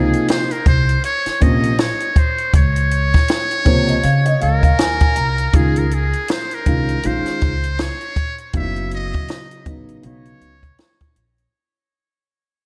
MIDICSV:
0, 0, Header, 1, 6, 480
1, 0, Start_track
1, 0, Key_signature, -5, "major"
1, 0, Tempo, 750000
1, 1621, Time_signature, 4, 2, 24, 8
1, 8097, End_track
2, 0, Start_track
2, 0, Title_t, "Muted trumpet"
2, 0, Program_c, 0, 59
2, 0, Note_on_c, 0, 68, 82
2, 183, Note_off_c, 0, 68, 0
2, 191, Note_on_c, 0, 72, 90
2, 331, Note_on_c, 0, 70, 80
2, 341, Note_off_c, 0, 72, 0
2, 425, Note_off_c, 0, 70, 0
2, 432, Note_on_c, 0, 72, 96
2, 650, Note_off_c, 0, 72, 0
2, 670, Note_on_c, 0, 73, 103
2, 912, Note_on_c, 0, 75, 97
2, 921, Note_off_c, 0, 73, 0
2, 1151, Note_on_c, 0, 73, 97
2, 1161, Note_off_c, 0, 75, 0
2, 1397, Note_on_c, 0, 72, 83
2, 1406, Note_off_c, 0, 73, 0
2, 1629, Note_off_c, 0, 72, 0
2, 1636, Note_on_c, 0, 73, 109
2, 2803, Note_off_c, 0, 73, 0
2, 2833, Note_on_c, 0, 70, 93
2, 3558, Note_on_c, 0, 68, 81
2, 3567, Note_off_c, 0, 70, 0
2, 3699, Note_on_c, 0, 70, 72
2, 3708, Note_off_c, 0, 68, 0
2, 3799, Note_on_c, 0, 68, 78
2, 3809, Note_off_c, 0, 70, 0
2, 4041, Note_on_c, 0, 72, 82
2, 4051, Note_off_c, 0, 68, 0
2, 4187, Note_on_c, 0, 70, 83
2, 4196, Note_off_c, 0, 72, 0
2, 4520, Note_on_c, 0, 72, 98
2, 4530, Note_off_c, 0, 70, 0
2, 5005, Note_on_c, 0, 73, 101
2, 5015, Note_off_c, 0, 72, 0
2, 5373, Note_off_c, 0, 73, 0
2, 5481, Note_on_c, 0, 76, 95
2, 5695, Note_off_c, 0, 76, 0
2, 5724, Note_on_c, 0, 75, 98
2, 6247, Note_off_c, 0, 75, 0
2, 6441, Note_on_c, 0, 73, 89
2, 7125, Note_off_c, 0, 73, 0
2, 8097, End_track
3, 0, Start_track
3, 0, Title_t, "Upright piano"
3, 0, Program_c, 1, 0
3, 0, Note_on_c, 1, 48, 55
3, 0, Note_on_c, 1, 53, 58
3, 0, Note_on_c, 1, 58, 55
3, 0, Note_on_c, 1, 63, 70
3, 293, Note_off_c, 1, 48, 0
3, 294, Note_off_c, 1, 53, 0
3, 295, Note_off_c, 1, 58, 0
3, 297, Note_off_c, 1, 63, 0
3, 898, Note_on_c, 1, 48, 65
3, 902, Note_on_c, 1, 53, 61
3, 905, Note_on_c, 1, 58, 58
3, 909, Note_on_c, 1, 61, 71
3, 1081, Note_off_c, 1, 48, 0
3, 1083, Note_off_c, 1, 53, 0
3, 1085, Note_off_c, 1, 58, 0
3, 1087, Note_off_c, 1, 61, 0
3, 2335, Note_on_c, 1, 48, 84
3, 2339, Note_on_c, 1, 53, 70
3, 2341, Note_on_c, 1, 73, 69
3, 2342, Note_on_c, 1, 58, 74
3, 2347, Note_on_c, 1, 60, 87
3, 2474, Note_off_c, 1, 73, 0
3, 2480, Note_on_c, 1, 75, 65
3, 2520, Note_off_c, 1, 48, 0
3, 2522, Note_off_c, 1, 53, 0
3, 2523, Note_off_c, 1, 58, 0
3, 2526, Note_off_c, 1, 60, 0
3, 2572, Note_off_c, 1, 75, 0
3, 2579, Note_on_c, 1, 77, 66
3, 2713, Note_off_c, 1, 77, 0
3, 2723, Note_on_c, 1, 75, 64
3, 2814, Note_off_c, 1, 75, 0
3, 2821, Note_on_c, 1, 77, 66
3, 2954, Note_off_c, 1, 77, 0
3, 2965, Note_on_c, 1, 77, 71
3, 3055, Note_off_c, 1, 77, 0
3, 3063, Note_on_c, 1, 80, 69
3, 3194, Note_off_c, 1, 80, 0
3, 3203, Note_on_c, 1, 80, 66
3, 3294, Note_off_c, 1, 80, 0
3, 3302, Note_on_c, 1, 82, 64
3, 3525, Note_off_c, 1, 82, 0
3, 3536, Note_on_c, 1, 51, 60
3, 3540, Note_on_c, 1, 56, 53
3, 3544, Note_on_c, 1, 61, 54
3, 3548, Note_on_c, 1, 65, 71
3, 3720, Note_off_c, 1, 51, 0
3, 3722, Note_off_c, 1, 56, 0
3, 3724, Note_off_c, 1, 61, 0
3, 3726, Note_off_c, 1, 65, 0
3, 4262, Note_on_c, 1, 51, 61
3, 4264, Note_on_c, 1, 56, 54
3, 4268, Note_on_c, 1, 61, 58
3, 4272, Note_on_c, 1, 65, 65
3, 4443, Note_off_c, 1, 51, 0
3, 4444, Note_off_c, 1, 56, 0
3, 4446, Note_off_c, 1, 61, 0
3, 4448, Note_off_c, 1, 65, 0
3, 4502, Note_on_c, 1, 51, 60
3, 4503, Note_on_c, 1, 56, 56
3, 4508, Note_on_c, 1, 61, 51
3, 4511, Note_on_c, 1, 65, 67
3, 4799, Note_off_c, 1, 51, 0
3, 4799, Note_off_c, 1, 56, 0
3, 4802, Note_off_c, 1, 61, 0
3, 4803, Note_off_c, 1, 65, 0
3, 5463, Note_on_c, 1, 49, 59
3, 5464, Note_on_c, 1, 54, 59
3, 5467, Note_on_c, 1, 59, 54
3, 5471, Note_on_c, 1, 63, 54
3, 5513, Note_on_c, 1, 64, 63
3, 5516, Note_off_c, 1, 63, 0
3, 6143, Note_off_c, 1, 49, 0
3, 6143, Note_off_c, 1, 54, 0
3, 6145, Note_off_c, 1, 59, 0
3, 6168, Note_off_c, 1, 64, 0
3, 6179, Note_on_c, 1, 49, 52
3, 6181, Note_on_c, 1, 54, 52
3, 6184, Note_on_c, 1, 59, 53
3, 6188, Note_on_c, 1, 63, 67
3, 6405, Note_off_c, 1, 49, 0
3, 6409, Note_off_c, 1, 54, 0
3, 6411, Note_off_c, 1, 59, 0
3, 6414, Note_on_c, 1, 49, 59
3, 6415, Note_off_c, 1, 63, 0
3, 6418, Note_on_c, 1, 54, 51
3, 6421, Note_on_c, 1, 59, 50
3, 6425, Note_on_c, 1, 63, 66
3, 6715, Note_off_c, 1, 49, 0
3, 6717, Note_off_c, 1, 54, 0
3, 6718, Note_off_c, 1, 59, 0
3, 6720, Note_off_c, 1, 63, 0
3, 8097, End_track
4, 0, Start_track
4, 0, Title_t, "Upright bass"
4, 0, Program_c, 2, 32
4, 0, Note_on_c, 2, 37, 86
4, 71, Note_off_c, 2, 37, 0
4, 423, Note_on_c, 2, 36, 90
4, 607, Note_off_c, 2, 36, 0
4, 908, Note_on_c, 2, 34, 92
4, 1200, Note_off_c, 2, 34, 0
4, 1624, Note_on_c, 2, 37, 91
4, 1992, Note_off_c, 2, 37, 0
4, 2344, Note_on_c, 2, 37, 79
4, 2527, Note_off_c, 2, 37, 0
4, 2586, Note_on_c, 2, 49, 97
4, 2768, Note_off_c, 2, 49, 0
4, 2828, Note_on_c, 2, 37, 91
4, 3010, Note_off_c, 2, 37, 0
4, 3066, Note_on_c, 2, 39, 81
4, 3249, Note_off_c, 2, 39, 0
4, 3310, Note_on_c, 2, 36, 71
4, 3491, Note_off_c, 2, 36, 0
4, 3546, Note_on_c, 2, 37, 88
4, 3913, Note_off_c, 2, 37, 0
4, 4265, Note_on_c, 2, 36, 79
4, 4448, Note_off_c, 2, 36, 0
4, 4511, Note_on_c, 2, 34, 104
4, 4617, Note_off_c, 2, 34, 0
4, 4751, Note_on_c, 2, 37, 87
4, 5042, Note_off_c, 2, 37, 0
4, 5465, Note_on_c, 2, 30, 88
4, 5833, Note_off_c, 2, 30, 0
4, 6185, Note_on_c, 2, 33, 83
4, 6368, Note_off_c, 2, 33, 0
4, 6423, Note_on_c, 2, 35, 90
4, 6607, Note_off_c, 2, 35, 0
4, 6663, Note_on_c, 2, 37, 78
4, 6847, Note_off_c, 2, 37, 0
4, 7143, Note_on_c, 2, 34, 65
4, 7326, Note_off_c, 2, 34, 0
4, 8097, End_track
5, 0, Start_track
5, 0, Title_t, "Muted upright bass strokes"
5, 806, Note_on_c, 9, 29, 41
5, 870, Note_off_c, 9, 29, 0
5, 8097, End_track
6, 0, Start_track
6, 0, Title_t, "Drums"
6, 86, Note_on_c, 9, 42, 50
6, 150, Note_off_c, 9, 42, 0
6, 181, Note_on_c, 9, 42, 98
6, 193, Note_on_c, 9, 38, 113
6, 245, Note_off_c, 9, 42, 0
6, 257, Note_off_c, 9, 38, 0
6, 326, Note_on_c, 9, 42, 57
6, 390, Note_off_c, 9, 42, 0
6, 420, Note_on_c, 9, 42, 71
6, 423, Note_on_c, 9, 36, 85
6, 484, Note_off_c, 9, 42, 0
6, 487, Note_off_c, 9, 36, 0
6, 569, Note_on_c, 9, 42, 47
6, 633, Note_off_c, 9, 42, 0
6, 663, Note_on_c, 9, 42, 87
6, 727, Note_off_c, 9, 42, 0
6, 807, Note_on_c, 9, 42, 58
6, 810, Note_on_c, 9, 38, 38
6, 871, Note_off_c, 9, 42, 0
6, 874, Note_off_c, 9, 38, 0
6, 904, Note_on_c, 9, 42, 65
6, 908, Note_on_c, 9, 36, 79
6, 968, Note_off_c, 9, 42, 0
6, 972, Note_off_c, 9, 36, 0
6, 1046, Note_on_c, 9, 42, 50
6, 1110, Note_off_c, 9, 42, 0
6, 1142, Note_on_c, 9, 42, 80
6, 1147, Note_on_c, 9, 38, 103
6, 1206, Note_off_c, 9, 42, 0
6, 1211, Note_off_c, 9, 38, 0
6, 1282, Note_on_c, 9, 42, 50
6, 1346, Note_off_c, 9, 42, 0
6, 1382, Note_on_c, 9, 36, 89
6, 1383, Note_on_c, 9, 42, 71
6, 1446, Note_off_c, 9, 36, 0
6, 1447, Note_off_c, 9, 42, 0
6, 1525, Note_on_c, 9, 42, 46
6, 1589, Note_off_c, 9, 42, 0
6, 1622, Note_on_c, 9, 42, 94
6, 1623, Note_on_c, 9, 36, 109
6, 1686, Note_off_c, 9, 42, 0
6, 1687, Note_off_c, 9, 36, 0
6, 1767, Note_on_c, 9, 42, 57
6, 1831, Note_off_c, 9, 42, 0
6, 1864, Note_on_c, 9, 42, 68
6, 1928, Note_off_c, 9, 42, 0
6, 2007, Note_on_c, 9, 42, 46
6, 2012, Note_on_c, 9, 36, 80
6, 2017, Note_on_c, 9, 38, 36
6, 2071, Note_off_c, 9, 42, 0
6, 2076, Note_off_c, 9, 36, 0
6, 2081, Note_off_c, 9, 38, 0
6, 2100, Note_on_c, 9, 42, 87
6, 2112, Note_on_c, 9, 38, 119
6, 2164, Note_off_c, 9, 42, 0
6, 2176, Note_off_c, 9, 38, 0
6, 2246, Note_on_c, 9, 42, 54
6, 2310, Note_off_c, 9, 42, 0
6, 2340, Note_on_c, 9, 42, 66
6, 2342, Note_on_c, 9, 36, 94
6, 2404, Note_off_c, 9, 42, 0
6, 2406, Note_off_c, 9, 36, 0
6, 2486, Note_on_c, 9, 42, 46
6, 2550, Note_off_c, 9, 42, 0
6, 2581, Note_on_c, 9, 42, 89
6, 2645, Note_off_c, 9, 42, 0
6, 2724, Note_on_c, 9, 42, 62
6, 2788, Note_off_c, 9, 42, 0
6, 2825, Note_on_c, 9, 42, 58
6, 2889, Note_off_c, 9, 42, 0
6, 2964, Note_on_c, 9, 36, 77
6, 2968, Note_on_c, 9, 42, 51
6, 3028, Note_off_c, 9, 36, 0
6, 3032, Note_off_c, 9, 42, 0
6, 3063, Note_on_c, 9, 42, 93
6, 3068, Note_on_c, 9, 38, 92
6, 3127, Note_off_c, 9, 42, 0
6, 3132, Note_off_c, 9, 38, 0
6, 3203, Note_on_c, 9, 42, 50
6, 3207, Note_on_c, 9, 36, 87
6, 3267, Note_off_c, 9, 42, 0
6, 3271, Note_off_c, 9, 36, 0
6, 3301, Note_on_c, 9, 42, 69
6, 3365, Note_off_c, 9, 42, 0
6, 3444, Note_on_c, 9, 42, 47
6, 3508, Note_off_c, 9, 42, 0
6, 3541, Note_on_c, 9, 42, 90
6, 3543, Note_on_c, 9, 36, 96
6, 3605, Note_off_c, 9, 42, 0
6, 3607, Note_off_c, 9, 36, 0
6, 3686, Note_on_c, 9, 42, 53
6, 3750, Note_off_c, 9, 42, 0
6, 3784, Note_on_c, 9, 42, 63
6, 3848, Note_off_c, 9, 42, 0
6, 3926, Note_on_c, 9, 42, 46
6, 3990, Note_off_c, 9, 42, 0
6, 4021, Note_on_c, 9, 42, 98
6, 4032, Note_on_c, 9, 38, 115
6, 4085, Note_off_c, 9, 42, 0
6, 4096, Note_off_c, 9, 38, 0
6, 4167, Note_on_c, 9, 42, 56
6, 4231, Note_off_c, 9, 42, 0
6, 4262, Note_on_c, 9, 42, 66
6, 4265, Note_on_c, 9, 36, 88
6, 4326, Note_off_c, 9, 42, 0
6, 4329, Note_off_c, 9, 36, 0
6, 4407, Note_on_c, 9, 42, 47
6, 4471, Note_off_c, 9, 42, 0
6, 4501, Note_on_c, 9, 42, 88
6, 4565, Note_off_c, 9, 42, 0
6, 4645, Note_on_c, 9, 42, 60
6, 4648, Note_on_c, 9, 38, 36
6, 4709, Note_off_c, 9, 42, 0
6, 4712, Note_off_c, 9, 38, 0
6, 4745, Note_on_c, 9, 42, 57
6, 4749, Note_on_c, 9, 36, 79
6, 4809, Note_off_c, 9, 42, 0
6, 4813, Note_off_c, 9, 36, 0
6, 4887, Note_on_c, 9, 42, 51
6, 4951, Note_off_c, 9, 42, 0
6, 4983, Note_on_c, 9, 42, 81
6, 4988, Note_on_c, 9, 38, 94
6, 5047, Note_off_c, 9, 42, 0
6, 5052, Note_off_c, 9, 38, 0
6, 5125, Note_on_c, 9, 42, 50
6, 5189, Note_off_c, 9, 42, 0
6, 5224, Note_on_c, 9, 36, 87
6, 5225, Note_on_c, 9, 42, 70
6, 5288, Note_off_c, 9, 36, 0
6, 5289, Note_off_c, 9, 42, 0
6, 5365, Note_on_c, 9, 42, 38
6, 5429, Note_off_c, 9, 42, 0
6, 5461, Note_on_c, 9, 42, 90
6, 5464, Note_on_c, 9, 36, 93
6, 5525, Note_off_c, 9, 42, 0
6, 5528, Note_off_c, 9, 36, 0
6, 5607, Note_on_c, 9, 42, 48
6, 5671, Note_off_c, 9, 42, 0
6, 5704, Note_on_c, 9, 42, 65
6, 5768, Note_off_c, 9, 42, 0
6, 5846, Note_on_c, 9, 42, 44
6, 5853, Note_on_c, 9, 36, 83
6, 5910, Note_off_c, 9, 42, 0
6, 5917, Note_off_c, 9, 36, 0
6, 5941, Note_on_c, 9, 42, 88
6, 5953, Note_on_c, 9, 38, 114
6, 6005, Note_off_c, 9, 42, 0
6, 6017, Note_off_c, 9, 38, 0
6, 6087, Note_on_c, 9, 42, 53
6, 6151, Note_off_c, 9, 42, 0
6, 6181, Note_on_c, 9, 42, 66
6, 6183, Note_on_c, 9, 36, 88
6, 6245, Note_off_c, 9, 42, 0
6, 6247, Note_off_c, 9, 36, 0
6, 6327, Note_on_c, 9, 42, 43
6, 6391, Note_off_c, 9, 42, 0
6, 6421, Note_on_c, 9, 42, 81
6, 6485, Note_off_c, 9, 42, 0
6, 6563, Note_on_c, 9, 42, 55
6, 6627, Note_off_c, 9, 42, 0
6, 6665, Note_on_c, 9, 42, 57
6, 6729, Note_off_c, 9, 42, 0
6, 6803, Note_on_c, 9, 36, 69
6, 6806, Note_on_c, 9, 42, 46
6, 6867, Note_off_c, 9, 36, 0
6, 6870, Note_off_c, 9, 42, 0
6, 6902, Note_on_c, 9, 42, 76
6, 6906, Note_on_c, 9, 38, 94
6, 6966, Note_off_c, 9, 42, 0
6, 6970, Note_off_c, 9, 38, 0
6, 7043, Note_on_c, 9, 42, 49
6, 7046, Note_on_c, 9, 36, 78
6, 7107, Note_off_c, 9, 42, 0
6, 7110, Note_off_c, 9, 36, 0
6, 7142, Note_on_c, 9, 42, 67
6, 7206, Note_off_c, 9, 42, 0
6, 7284, Note_on_c, 9, 42, 40
6, 7348, Note_off_c, 9, 42, 0
6, 8097, End_track
0, 0, End_of_file